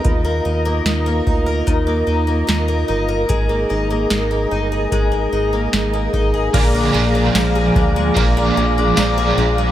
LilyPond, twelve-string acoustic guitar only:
\new Staff \with { instrumentName = "Twelve-string acoustic guitar" } { \time 4/4 \key bes \mixolydian \tempo 4 = 74 r16 bes16 ees'16 bes16 ees'16 bes16 ees'16 bes'16 ees16 bes16 ees'16 bes16 ees'16 bes16 ees'16 bes'16 | aes16 bes16 ees'16 bes16 ees'16 bes16 ees'16 aes'16 aes16 bes16 ees'16 bes16 ees'16 bes16 ees'16 aes'16 | bes,16 d'16 aes16 d'16 f16 aes'16 d'16 aes16 bes,16 d'16 aes16 d'16 f16 aes'16 d'16 aes16 | }